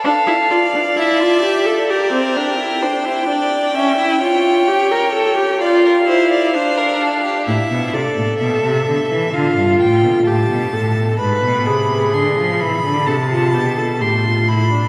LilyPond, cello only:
\new Staff \with { instrumentName = "Cello" } { \clef bass \time 4/4 \key d \minor \tempo 4 = 64 r1 | r1 | a,16 b,16 c16 a,16 b,16 c16 d16 e16 d16 g,16 a,16 b,16 a,16 b,16 a,8 | gis,16 b,16 c8 d16 f16 e16 d16 c8 b,8 a,4 | }